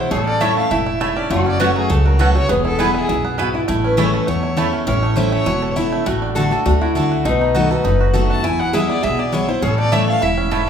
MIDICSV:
0, 0, Header, 1, 7, 480
1, 0, Start_track
1, 0, Key_signature, 3, "major"
1, 0, Tempo, 297177
1, 186, Time_signature, 4, 2, 24, 8
1, 17276, End_track
2, 0, Start_track
2, 0, Title_t, "Fiddle"
2, 0, Program_c, 0, 110
2, 0, Note_on_c, 0, 72, 89
2, 173, Note_on_c, 0, 73, 81
2, 197, Note_off_c, 0, 72, 0
2, 406, Note_off_c, 0, 73, 0
2, 416, Note_on_c, 0, 74, 97
2, 661, Note_on_c, 0, 76, 87
2, 685, Note_off_c, 0, 74, 0
2, 905, Note_off_c, 0, 76, 0
2, 915, Note_on_c, 0, 77, 104
2, 1139, Note_on_c, 0, 76, 84
2, 1163, Note_off_c, 0, 77, 0
2, 1875, Note_on_c, 0, 74, 88
2, 1899, Note_off_c, 0, 76, 0
2, 2101, Note_on_c, 0, 73, 79
2, 2125, Note_off_c, 0, 74, 0
2, 2351, Note_off_c, 0, 73, 0
2, 2360, Note_on_c, 0, 74, 101
2, 2577, Note_on_c, 0, 71, 90
2, 2601, Note_off_c, 0, 74, 0
2, 2830, Note_off_c, 0, 71, 0
2, 2840, Note_on_c, 0, 68, 96
2, 3064, Note_on_c, 0, 69, 82
2, 3088, Note_off_c, 0, 68, 0
2, 3321, Note_on_c, 0, 70, 82
2, 3345, Note_off_c, 0, 69, 0
2, 3549, Note_on_c, 0, 71, 92
2, 3574, Note_off_c, 0, 70, 0
2, 3801, Note_off_c, 0, 71, 0
2, 3809, Note_on_c, 0, 73, 108
2, 4039, Note_on_c, 0, 71, 93
2, 4063, Note_off_c, 0, 73, 0
2, 4286, Note_off_c, 0, 71, 0
2, 4293, Note_on_c, 0, 69, 90
2, 4520, Note_on_c, 0, 68, 84
2, 4544, Note_off_c, 0, 69, 0
2, 4754, Note_off_c, 0, 68, 0
2, 4764, Note_on_c, 0, 68, 99
2, 5419, Note_off_c, 0, 68, 0
2, 6209, Note_on_c, 0, 71, 95
2, 6426, Note_on_c, 0, 68, 74
2, 6450, Note_off_c, 0, 71, 0
2, 6667, Note_off_c, 0, 68, 0
2, 6677, Note_on_c, 0, 71, 95
2, 6905, Note_on_c, 0, 73, 83
2, 6929, Note_off_c, 0, 71, 0
2, 7753, Note_off_c, 0, 73, 0
2, 7866, Note_on_c, 0, 73, 80
2, 8335, Note_on_c, 0, 72, 80
2, 8359, Note_off_c, 0, 73, 0
2, 8572, Note_off_c, 0, 72, 0
2, 8581, Note_on_c, 0, 73, 103
2, 9248, Note_off_c, 0, 73, 0
2, 11710, Note_on_c, 0, 71, 83
2, 12194, Note_on_c, 0, 69, 78
2, 12218, Note_off_c, 0, 71, 0
2, 12444, Note_on_c, 0, 71, 90
2, 12469, Note_off_c, 0, 69, 0
2, 13152, Note_off_c, 0, 71, 0
2, 13415, Note_on_c, 0, 81, 97
2, 13630, Note_on_c, 0, 80, 100
2, 13654, Note_off_c, 0, 81, 0
2, 13884, Note_on_c, 0, 78, 110
2, 13908, Note_off_c, 0, 80, 0
2, 14108, Note_on_c, 0, 76, 93
2, 14132, Note_off_c, 0, 78, 0
2, 14343, Note_off_c, 0, 76, 0
2, 14353, Note_on_c, 0, 74, 100
2, 14588, Note_on_c, 0, 76, 97
2, 14612, Note_off_c, 0, 74, 0
2, 14847, Note_on_c, 0, 74, 88
2, 14872, Note_off_c, 0, 76, 0
2, 15069, Note_on_c, 0, 73, 96
2, 15094, Note_off_c, 0, 74, 0
2, 15327, Note_on_c, 0, 72, 93
2, 15351, Note_off_c, 0, 73, 0
2, 15549, Note_on_c, 0, 73, 96
2, 15573, Note_off_c, 0, 72, 0
2, 15797, Note_off_c, 0, 73, 0
2, 15807, Note_on_c, 0, 74, 106
2, 16026, Note_on_c, 0, 76, 95
2, 16050, Note_off_c, 0, 74, 0
2, 16273, Note_off_c, 0, 76, 0
2, 16283, Note_on_c, 0, 77, 124
2, 16511, Note_on_c, 0, 76, 95
2, 16535, Note_off_c, 0, 77, 0
2, 17267, Note_off_c, 0, 76, 0
2, 17276, End_track
3, 0, Start_track
3, 0, Title_t, "Mandolin"
3, 0, Program_c, 1, 25
3, 659, Note_on_c, 1, 57, 94
3, 668, Note_on_c, 1, 64, 90
3, 670, Note_on_c, 1, 73, 114
3, 679, Note_on_c, 1, 81, 100
3, 816, Note_off_c, 1, 57, 0
3, 821, Note_off_c, 1, 64, 0
3, 822, Note_off_c, 1, 73, 0
3, 826, Note_off_c, 1, 81, 0
3, 1622, Note_on_c, 1, 57, 84
3, 1628, Note_on_c, 1, 64, 85
3, 1630, Note_on_c, 1, 73, 91
3, 1636, Note_on_c, 1, 81, 103
3, 1778, Note_off_c, 1, 57, 0
3, 1780, Note_off_c, 1, 64, 0
3, 1781, Note_off_c, 1, 73, 0
3, 1785, Note_off_c, 1, 81, 0
3, 2583, Note_on_c, 1, 57, 97
3, 2589, Note_on_c, 1, 66, 104
3, 2593, Note_on_c, 1, 73, 106
3, 2599, Note_on_c, 1, 78, 106
3, 2738, Note_off_c, 1, 57, 0
3, 2741, Note_off_c, 1, 66, 0
3, 2743, Note_off_c, 1, 73, 0
3, 2746, Note_off_c, 1, 78, 0
3, 3548, Note_on_c, 1, 57, 82
3, 3554, Note_on_c, 1, 66, 89
3, 3558, Note_on_c, 1, 73, 84
3, 3564, Note_on_c, 1, 78, 103
3, 3701, Note_off_c, 1, 57, 0
3, 3703, Note_off_c, 1, 66, 0
3, 3706, Note_off_c, 1, 73, 0
3, 3708, Note_off_c, 1, 78, 0
3, 4505, Note_on_c, 1, 59, 97
3, 4513, Note_on_c, 1, 64, 92
3, 4517, Note_on_c, 1, 71, 111
3, 4520, Note_on_c, 1, 80, 105
3, 4659, Note_off_c, 1, 59, 0
3, 4663, Note_off_c, 1, 64, 0
3, 4665, Note_off_c, 1, 71, 0
3, 4667, Note_off_c, 1, 80, 0
3, 5458, Note_on_c, 1, 59, 90
3, 5466, Note_on_c, 1, 64, 86
3, 5471, Note_on_c, 1, 71, 97
3, 5476, Note_on_c, 1, 80, 98
3, 5616, Note_off_c, 1, 59, 0
3, 5620, Note_off_c, 1, 64, 0
3, 5622, Note_off_c, 1, 71, 0
3, 5625, Note_off_c, 1, 80, 0
3, 6420, Note_on_c, 1, 57, 96
3, 6428, Note_on_c, 1, 64, 107
3, 6432, Note_on_c, 1, 73, 106
3, 6434, Note_on_c, 1, 81, 102
3, 6577, Note_off_c, 1, 57, 0
3, 6581, Note_off_c, 1, 64, 0
3, 6583, Note_off_c, 1, 73, 0
3, 6584, Note_off_c, 1, 81, 0
3, 7383, Note_on_c, 1, 57, 84
3, 7387, Note_on_c, 1, 64, 90
3, 7390, Note_on_c, 1, 73, 85
3, 7398, Note_on_c, 1, 81, 98
3, 7539, Note_off_c, 1, 57, 0
3, 7541, Note_off_c, 1, 64, 0
3, 7543, Note_off_c, 1, 73, 0
3, 7546, Note_off_c, 1, 81, 0
3, 16026, Note_on_c, 1, 57, 100
3, 16031, Note_on_c, 1, 64, 100
3, 16037, Note_on_c, 1, 73, 106
3, 16040, Note_on_c, 1, 81, 108
3, 16182, Note_off_c, 1, 57, 0
3, 16185, Note_off_c, 1, 64, 0
3, 16188, Note_off_c, 1, 73, 0
3, 16189, Note_off_c, 1, 81, 0
3, 16978, Note_on_c, 1, 57, 81
3, 16986, Note_on_c, 1, 64, 93
3, 16991, Note_on_c, 1, 73, 89
3, 16994, Note_on_c, 1, 81, 100
3, 17137, Note_off_c, 1, 57, 0
3, 17141, Note_off_c, 1, 64, 0
3, 17144, Note_off_c, 1, 73, 0
3, 17145, Note_off_c, 1, 81, 0
3, 17276, End_track
4, 0, Start_track
4, 0, Title_t, "Resonator guitar played with a steel bar"
4, 0, Program_c, 2, 25
4, 186, Note_on_c, 2, 69, 105
4, 1149, Note_on_c, 2, 64, 85
4, 1174, Note_off_c, 2, 69, 0
4, 2108, Note_on_c, 2, 66, 103
4, 2136, Note_off_c, 2, 64, 0
4, 4007, Note_off_c, 2, 66, 0
4, 4013, Note_on_c, 2, 68, 94
4, 5473, Note_off_c, 2, 68, 0
4, 5479, Note_on_c, 2, 66, 89
4, 5729, Note_on_c, 2, 64, 86
4, 5734, Note_off_c, 2, 66, 0
4, 5924, Note_off_c, 2, 64, 0
4, 5943, Note_on_c, 2, 64, 84
4, 7575, Note_off_c, 2, 64, 0
4, 7864, Note_on_c, 2, 64, 90
4, 8762, Note_off_c, 2, 64, 0
4, 8837, Note_on_c, 2, 66, 95
4, 9280, Note_off_c, 2, 66, 0
4, 9305, Note_on_c, 2, 64, 89
4, 9787, Note_off_c, 2, 64, 0
4, 9794, Note_on_c, 2, 66, 106
4, 10239, Note_off_c, 2, 66, 0
4, 10257, Note_on_c, 2, 69, 107
4, 10710, Note_off_c, 2, 69, 0
4, 10749, Note_on_c, 2, 66, 99
4, 10998, Note_off_c, 2, 66, 0
4, 11005, Note_on_c, 2, 64, 93
4, 11709, Note_off_c, 2, 64, 0
4, 11715, Note_on_c, 2, 63, 103
4, 13140, Note_on_c, 2, 66, 95
4, 13198, Note_off_c, 2, 63, 0
4, 13620, Note_on_c, 2, 64, 94
4, 13641, Note_off_c, 2, 66, 0
4, 14103, Note_on_c, 2, 68, 98
4, 14121, Note_off_c, 2, 64, 0
4, 14554, Note_off_c, 2, 68, 0
4, 14581, Note_on_c, 2, 68, 95
4, 15269, Note_off_c, 2, 68, 0
4, 15544, Note_on_c, 2, 69, 104
4, 16441, Note_off_c, 2, 69, 0
4, 16516, Note_on_c, 2, 64, 87
4, 17276, Note_off_c, 2, 64, 0
4, 17276, End_track
5, 0, Start_track
5, 0, Title_t, "Five-string banjo"
5, 0, Program_c, 3, 105
5, 0, Note_on_c, 3, 59, 68
5, 0, Note_on_c, 3, 64, 55
5, 177, Note_off_c, 3, 59, 0
5, 183, Note_on_c, 3, 57, 70
5, 186, Note_off_c, 3, 64, 0
5, 442, Note_on_c, 3, 61, 61
5, 664, Note_on_c, 3, 64, 59
5, 867, Note_off_c, 3, 57, 0
5, 922, Note_on_c, 3, 69, 55
5, 1102, Note_off_c, 3, 61, 0
5, 1150, Note_on_c, 3, 57, 62
5, 1348, Note_off_c, 3, 64, 0
5, 1396, Note_on_c, 3, 64, 59
5, 1582, Note_off_c, 3, 69, 0
5, 1611, Note_off_c, 3, 57, 0
5, 1630, Note_on_c, 3, 57, 77
5, 1883, Note_on_c, 3, 61, 62
5, 2058, Note_off_c, 3, 64, 0
5, 2090, Note_off_c, 3, 57, 0
5, 2107, Note_off_c, 3, 61, 0
5, 2110, Note_on_c, 3, 57, 78
5, 2360, Note_on_c, 3, 61, 61
5, 2588, Note_on_c, 3, 66, 59
5, 2791, Note_off_c, 3, 57, 0
5, 2843, Note_on_c, 3, 54, 61
5, 3020, Note_off_c, 3, 61, 0
5, 3071, Note_on_c, 3, 57, 59
5, 3270, Note_off_c, 3, 66, 0
5, 3322, Note_on_c, 3, 66, 62
5, 3502, Note_off_c, 3, 54, 0
5, 3551, Note_on_c, 3, 69, 61
5, 3751, Note_off_c, 3, 57, 0
5, 3805, Note_on_c, 3, 57, 60
5, 3981, Note_off_c, 3, 66, 0
5, 4013, Note_off_c, 3, 57, 0
5, 4020, Note_on_c, 3, 59, 73
5, 4028, Note_off_c, 3, 69, 0
5, 4277, Note_on_c, 3, 64, 62
5, 4502, Note_off_c, 3, 64, 0
5, 4502, Note_on_c, 3, 64, 60
5, 4706, Note_off_c, 3, 59, 0
5, 4750, Note_off_c, 3, 64, 0
5, 4756, Note_on_c, 3, 64, 62
5, 4982, Note_off_c, 3, 64, 0
5, 4988, Note_on_c, 3, 64, 58
5, 5243, Note_on_c, 3, 59, 65
5, 5454, Note_off_c, 3, 64, 0
5, 5461, Note_on_c, 3, 64, 60
5, 5701, Note_off_c, 3, 59, 0
5, 5720, Note_on_c, 3, 59, 55
5, 5938, Note_off_c, 3, 59, 0
5, 5944, Note_on_c, 3, 57, 82
5, 6209, Note_on_c, 3, 61, 58
5, 6423, Note_off_c, 3, 64, 0
5, 6429, Note_on_c, 3, 64, 57
5, 6629, Note_off_c, 3, 57, 0
5, 6681, Note_on_c, 3, 69, 59
5, 6866, Note_off_c, 3, 61, 0
5, 6900, Note_on_c, 3, 57, 62
5, 7111, Note_off_c, 3, 64, 0
5, 7157, Note_on_c, 3, 64, 57
5, 7342, Note_off_c, 3, 69, 0
5, 7370, Note_off_c, 3, 57, 0
5, 7389, Note_on_c, 3, 57, 76
5, 7641, Note_on_c, 3, 61, 54
5, 7820, Note_off_c, 3, 64, 0
5, 7856, Note_off_c, 3, 61, 0
5, 7869, Note_off_c, 3, 57, 0
5, 7876, Note_on_c, 3, 61, 68
5, 8119, Note_on_c, 3, 57, 61
5, 8349, Note_on_c, 3, 64, 54
5, 8556, Note_off_c, 3, 61, 0
5, 8591, Note_off_c, 3, 57, 0
5, 8598, Note_on_c, 3, 57, 71
5, 8808, Note_off_c, 3, 64, 0
5, 8828, Note_on_c, 3, 64, 63
5, 9082, Note_on_c, 3, 69, 58
5, 9294, Note_off_c, 3, 64, 0
5, 9313, Note_on_c, 3, 64, 62
5, 9561, Note_off_c, 3, 57, 0
5, 9568, Note_on_c, 3, 57, 59
5, 9786, Note_off_c, 3, 57, 0
5, 9792, Note_off_c, 3, 64, 0
5, 9793, Note_on_c, 3, 57, 75
5, 10047, Note_on_c, 3, 62, 57
5, 10274, Note_on_c, 3, 66, 58
5, 10476, Note_off_c, 3, 57, 0
5, 10527, Note_off_c, 3, 69, 0
5, 10534, Note_on_c, 3, 69, 63
5, 10707, Note_off_c, 3, 62, 0
5, 10759, Note_on_c, 3, 62, 66
5, 10957, Note_off_c, 3, 66, 0
5, 11010, Note_on_c, 3, 66, 61
5, 11191, Note_off_c, 3, 69, 0
5, 11243, Note_on_c, 3, 69, 59
5, 11439, Note_off_c, 3, 62, 0
5, 11475, Note_off_c, 3, 66, 0
5, 11494, Note_on_c, 3, 66, 59
5, 11716, Note_off_c, 3, 66, 0
5, 11717, Note_on_c, 3, 57, 75
5, 11718, Note_off_c, 3, 69, 0
5, 11973, Note_on_c, 3, 63, 60
5, 12189, Note_on_c, 3, 66, 56
5, 12399, Note_off_c, 3, 57, 0
5, 12449, Note_on_c, 3, 69, 63
5, 12632, Note_off_c, 3, 63, 0
5, 12669, Note_on_c, 3, 63, 60
5, 12875, Note_off_c, 3, 66, 0
5, 12932, Note_on_c, 3, 66, 62
5, 13109, Note_off_c, 3, 69, 0
5, 13154, Note_on_c, 3, 69, 61
5, 13355, Note_off_c, 3, 63, 0
5, 13389, Note_off_c, 3, 66, 0
5, 13408, Note_on_c, 3, 66, 60
5, 13634, Note_off_c, 3, 66, 0
5, 13634, Note_off_c, 3, 69, 0
5, 13642, Note_on_c, 3, 64, 65
5, 13896, Note_on_c, 3, 59, 59
5, 14096, Note_off_c, 3, 64, 0
5, 14115, Note_on_c, 3, 64, 62
5, 14348, Note_off_c, 3, 64, 0
5, 14368, Note_on_c, 3, 64, 61
5, 14552, Note_off_c, 3, 59, 0
5, 14574, Note_off_c, 3, 64, 0
5, 14594, Note_on_c, 3, 64, 58
5, 14824, Note_off_c, 3, 64, 0
5, 14843, Note_on_c, 3, 64, 58
5, 15049, Note_off_c, 3, 64, 0
5, 15068, Note_on_c, 3, 64, 62
5, 15300, Note_off_c, 3, 64, 0
5, 15319, Note_on_c, 3, 64, 59
5, 15545, Note_on_c, 3, 61, 65
5, 15549, Note_off_c, 3, 64, 0
5, 15800, Note_on_c, 3, 57, 58
5, 16020, Note_on_c, 3, 64, 57
5, 16231, Note_off_c, 3, 61, 0
5, 16278, Note_on_c, 3, 69, 61
5, 16462, Note_off_c, 3, 57, 0
5, 16478, Note_off_c, 3, 64, 0
5, 16498, Note_on_c, 3, 64, 60
5, 16759, Note_on_c, 3, 61, 58
5, 16941, Note_off_c, 3, 69, 0
5, 16988, Note_on_c, 3, 69, 61
5, 17186, Note_off_c, 3, 64, 0
5, 17276, Note_off_c, 3, 61, 0
5, 17276, Note_off_c, 3, 69, 0
5, 17276, End_track
6, 0, Start_track
6, 0, Title_t, "Steel-string acoustic guitar"
6, 0, Program_c, 4, 25
6, 0, Note_on_c, 4, 59, 83
6, 0, Note_on_c, 4, 64, 94
6, 163, Note_off_c, 4, 59, 0
6, 167, Note_off_c, 4, 64, 0
6, 178, Note_on_c, 4, 45, 100
6, 654, Note_on_c, 4, 52, 88
6, 663, Note_on_c, 4, 57, 96
6, 673, Note_on_c, 4, 61, 88
6, 680, Note_on_c, 4, 64, 91
6, 1096, Note_off_c, 4, 45, 0
6, 1117, Note_off_c, 4, 52, 0
6, 1122, Note_off_c, 4, 57, 0
6, 1127, Note_off_c, 4, 61, 0
6, 1130, Note_off_c, 4, 64, 0
6, 1146, Note_on_c, 4, 45, 89
6, 1603, Note_off_c, 4, 45, 0
6, 1631, Note_on_c, 4, 44, 87
6, 2085, Note_off_c, 4, 44, 0
6, 2107, Note_on_c, 4, 42, 97
6, 2576, Note_on_c, 4, 54, 88
6, 2581, Note_on_c, 4, 57, 100
6, 2594, Note_on_c, 4, 61, 91
6, 2603, Note_on_c, 4, 66, 103
6, 3021, Note_off_c, 4, 42, 0
6, 3038, Note_off_c, 4, 54, 0
6, 3040, Note_off_c, 4, 57, 0
6, 3047, Note_off_c, 4, 61, 0
6, 3051, Note_off_c, 4, 66, 0
6, 3062, Note_on_c, 4, 49, 95
6, 3538, Note_on_c, 4, 54, 79
6, 3542, Note_on_c, 4, 57, 88
6, 3554, Note_on_c, 4, 61, 84
6, 3563, Note_on_c, 4, 66, 94
6, 3774, Note_off_c, 4, 66, 0
6, 3785, Note_off_c, 4, 54, 0
6, 3788, Note_off_c, 4, 57, 0
6, 3793, Note_off_c, 4, 61, 0
6, 3793, Note_on_c, 4, 66, 56
6, 3820, Note_on_c, 4, 61, 55
6, 3978, Note_off_c, 4, 49, 0
6, 4013, Note_off_c, 4, 66, 0
6, 4026, Note_on_c, 4, 40, 92
6, 4027, Note_off_c, 4, 61, 0
6, 4502, Note_on_c, 4, 52, 85
6, 4513, Note_on_c, 4, 56, 88
6, 4521, Note_on_c, 4, 59, 94
6, 4527, Note_on_c, 4, 64, 93
6, 4941, Note_off_c, 4, 40, 0
6, 4961, Note_off_c, 4, 52, 0
6, 4967, Note_off_c, 4, 56, 0
6, 4971, Note_off_c, 4, 59, 0
6, 4974, Note_off_c, 4, 64, 0
6, 4995, Note_on_c, 4, 42, 86
6, 5448, Note_off_c, 4, 42, 0
6, 5479, Note_on_c, 4, 44, 79
6, 5930, Note_off_c, 4, 44, 0
6, 5950, Note_on_c, 4, 45, 100
6, 6414, Note_on_c, 4, 52, 92
6, 6424, Note_on_c, 4, 57, 94
6, 6434, Note_on_c, 4, 61, 89
6, 6442, Note_on_c, 4, 64, 99
6, 6864, Note_off_c, 4, 45, 0
6, 6878, Note_off_c, 4, 52, 0
6, 6883, Note_off_c, 4, 57, 0
6, 6888, Note_off_c, 4, 61, 0
6, 6892, Note_off_c, 4, 64, 0
6, 6912, Note_on_c, 4, 40, 88
6, 7375, Note_on_c, 4, 52, 79
6, 7384, Note_on_c, 4, 57, 90
6, 7395, Note_on_c, 4, 61, 85
6, 7398, Note_on_c, 4, 64, 89
6, 7825, Note_off_c, 4, 40, 0
6, 7839, Note_off_c, 4, 52, 0
6, 7843, Note_off_c, 4, 57, 0
6, 7849, Note_off_c, 4, 61, 0
6, 7850, Note_off_c, 4, 64, 0
6, 7863, Note_on_c, 4, 45, 100
6, 8330, Note_on_c, 4, 52, 88
6, 8343, Note_on_c, 4, 57, 99
6, 8354, Note_on_c, 4, 61, 99
6, 8362, Note_on_c, 4, 64, 104
6, 8781, Note_off_c, 4, 45, 0
6, 8797, Note_off_c, 4, 52, 0
6, 8803, Note_off_c, 4, 57, 0
6, 8809, Note_off_c, 4, 61, 0
6, 8813, Note_off_c, 4, 64, 0
6, 8821, Note_on_c, 4, 40, 96
6, 9303, Note_on_c, 4, 52, 91
6, 9312, Note_on_c, 4, 57, 91
6, 9321, Note_on_c, 4, 61, 83
6, 9332, Note_on_c, 4, 64, 91
6, 9741, Note_off_c, 4, 40, 0
6, 9764, Note_off_c, 4, 52, 0
6, 9769, Note_off_c, 4, 57, 0
6, 9773, Note_off_c, 4, 61, 0
6, 9779, Note_off_c, 4, 64, 0
6, 9791, Note_on_c, 4, 45, 94
6, 10266, Note_on_c, 4, 50, 99
6, 10275, Note_on_c, 4, 57, 93
6, 10287, Note_on_c, 4, 62, 93
6, 10291, Note_on_c, 4, 66, 99
6, 10498, Note_off_c, 4, 66, 0
6, 10512, Note_off_c, 4, 50, 0
6, 10517, Note_off_c, 4, 57, 0
6, 10518, Note_on_c, 4, 66, 63
6, 10523, Note_off_c, 4, 62, 0
6, 10541, Note_on_c, 4, 62, 52
6, 10706, Note_off_c, 4, 45, 0
6, 10739, Note_off_c, 4, 66, 0
6, 10750, Note_off_c, 4, 62, 0
6, 10751, Note_on_c, 4, 57, 86
6, 11219, Note_off_c, 4, 57, 0
6, 11229, Note_on_c, 4, 50, 82
6, 11238, Note_on_c, 4, 57, 82
6, 11250, Note_on_c, 4, 62, 84
6, 11259, Note_on_c, 4, 66, 95
6, 11688, Note_off_c, 4, 50, 0
6, 11693, Note_off_c, 4, 57, 0
6, 11699, Note_off_c, 4, 62, 0
6, 11704, Note_off_c, 4, 66, 0
6, 11714, Note_on_c, 4, 47, 93
6, 12187, Note_on_c, 4, 51, 89
6, 12197, Note_on_c, 4, 57, 85
6, 12204, Note_on_c, 4, 59, 95
6, 12211, Note_on_c, 4, 66, 98
6, 12428, Note_off_c, 4, 66, 0
6, 12434, Note_off_c, 4, 51, 0
6, 12439, Note_off_c, 4, 57, 0
6, 12443, Note_off_c, 4, 59, 0
6, 12447, Note_on_c, 4, 66, 66
6, 12472, Note_on_c, 4, 59, 55
6, 12629, Note_off_c, 4, 47, 0
6, 12664, Note_off_c, 4, 66, 0
6, 12673, Note_on_c, 4, 42, 91
6, 12677, Note_off_c, 4, 59, 0
6, 13139, Note_on_c, 4, 51, 81
6, 13146, Note_on_c, 4, 57, 94
6, 13158, Note_on_c, 4, 59, 84
6, 13168, Note_on_c, 4, 66, 96
6, 13589, Note_off_c, 4, 42, 0
6, 13604, Note_off_c, 4, 51, 0
6, 13608, Note_off_c, 4, 57, 0
6, 13613, Note_off_c, 4, 59, 0
6, 13618, Note_off_c, 4, 66, 0
6, 13630, Note_on_c, 4, 40, 92
6, 14104, Note_on_c, 4, 52, 94
6, 14116, Note_on_c, 4, 56, 96
6, 14124, Note_on_c, 4, 59, 98
6, 14134, Note_on_c, 4, 64, 105
6, 14546, Note_off_c, 4, 40, 0
6, 14566, Note_off_c, 4, 52, 0
6, 14572, Note_off_c, 4, 56, 0
6, 14576, Note_off_c, 4, 59, 0
6, 14581, Note_off_c, 4, 64, 0
6, 14591, Note_on_c, 4, 47, 85
6, 15060, Note_on_c, 4, 52, 77
6, 15072, Note_on_c, 4, 56, 83
6, 15081, Note_on_c, 4, 59, 83
6, 15092, Note_on_c, 4, 64, 101
6, 15301, Note_off_c, 4, 64, 0
6, 15310, Note_off_c, 4, 52, 0
6, 15316, Note_off_c, 4, 56, 0
6, 15320, Note_off_c, 4, 59, 0
6, 15320, Note_on_c, 4, 64, 63
6, 15343, Note_on_c, 4, 59, 48
6, 15506, Note_off_c, 4, 47, 0
6, 15540, Note_off_c, 4, 64, 0
6, 15545, Note_on_c, 4, 45, 99
6, 15552, Note_off_c, 4, 59, 0
6, 16019, Note_on_c, 4, 52, 78
6, 16032, Note_on_c, 4, 57, 104
6, 16042, Note_on_c, 4, 61, 94
6, 16047, Note_on_c, 4, 64, 91
6, 16461, Note_off_c, 4, 45, 0
6, 16482, Note_off_c, 4, 52, 0
6, 16488, Note_off_c, 4, 57, 0
6, 16493, Note_off_c, 4, 61, 0
6, 16496, Note_off_c, 4, 64, 0
6, 16507, Note_on_c, 4, 45, 85
6, 16965, Note_off_c, 4, 45, 0
6, 16982, Note_on_c, 4, 44, 79
6, 17276, Note_off_c, 4, 44, 0
6, 17276, End_track
7, 0, Start_track
7, 0, Title_t, "Upright bass"
7, 0, Program_c, 5, 32
7, 180, Note_on_c, 5, 33, 90
7, 893, Note_off_c, 5, 33, 0
7, 1144, Note_on_c, 5, 28, 85
7, 1855, Note_off_c, 5, 28, 0
7, 2099, Note_on_c, 5, 30, 85
7, 2813, Note_off_c, 5, 30, 0
7, 3066, Note_on_c, 5, 37, 94
7, 3777, Note_off_c, 5, 37, 0
7, 4028, Note_on_c, 5, 28, 87
7, 4738, Note_off_c, 5, 28, 0
7, 4989, Note_on_c, 5, 35, 89
7, 5699, Note_off_c, 5, 35, 0
7, 5953, Note_on_c, 5, 33, 91
7, 6662, Note_off_c, 5, 33, 0
7, 6912, Note_on_c, 5, 40, 86
7, 7622, Note_off_c, 5, 40, 0
7, 7861, Note_on_c, 5, 33, 90
7, 8576, Note_off_c, 5, 33, 0
7, 8827, Note_on_c, 5, 28, 90
7, 9540, Note_off_c, 5, 28, 0
7, 9796, Note_on_c, 5, 33, 92
7, 10506, Note_off_c, 5, 33, 0
7, 10756, Note_on_c, 5, 38, 97
7, 11466, Note_off_c, 5, 38, 0
7, 11708, Note_on_c, 5, 35, 84
7, 12421, Note_off_c, 5, 35, 0
7, 12673, Note_on_c, 5, 30, 91
7, 13385, Note_off_c, 5, 30, 0
7, 13629, Note_on_c, 5, 40, 88
7, 14342, Note_off_c, 5, 40, 0
7, 14595, Note_on_c, 5, 35, 84
7, 15305, Note_off_c, 5, 35, 0
7, 15545, Note_on_c, 5, 33, 93
7, 16257, Note_off_c, 5, 33, 0
7, 16512, Note_on_c, 5, 28, 95
7, 17221, Note_off_c, 5, 28, 0
7, 17276, End_track
0, 0, End_of_file